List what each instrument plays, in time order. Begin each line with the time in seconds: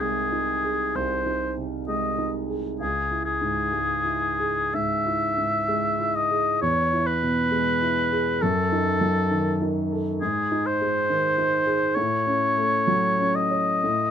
Already playing: grand piano C2 C3 D#4
0.00 grand piano G#3, oboe G#4
0.32 grand piano D#4
0.63 grand piano G#4
0.95 grand piano C2, oboe C5
1.26 grand piano D#4
1.57 grand piano C3
1.88 grand piano G#3, oboe D#5
2.18 grand piano D#4
2.49 grand piano G#4
2.80 grand piano C#2, oboe G#4
3.11 grand piano E4
3.25 oboe G#4
3.41 grand piano G#2
3.73 grand piano G#3
4.05 grand piano E4
4.40 grand piano G#4
4.74 grand piano G#2, oboe E5
5.06 grand piano E4
5.38 grand piano G#2
5.68 grand piano G#3
6.00 grand piano E4
6.15 oboe D#5
6.31 grand piano G#4
6.61 grand piano E2, oboe C#5
6.93 grand piano E4
7.07 oboe B4
7.22 grand piano B2
7.51 grand piano G#3
7.82 grand piano E4
8.12 grand piano G#4
8.42 grand piano F#2, oboe A4
8.72 grand piano D#4
9.01 grand piano F#3
9.31 grand piano D#3
9.62 grand piano D#4
9.92 grand piano A4
10.21 grand piano G#2, oboe G#4
10.52 grand piano D#4
10.66 oboe C5
10.81 grand piano G#3
11.09 grand piano D#3
11.38 grand piano D#4
11.66 grand piano G#4
11.95 grand piano A2, oboe C#5
12.27 grand piano C#4
12.57 grand piano A3
12.87 grand piano F#3
13.20 grand piano C#4
13.35 oboe D#5
13.51 grand piano C#5
13.84 grand piano A2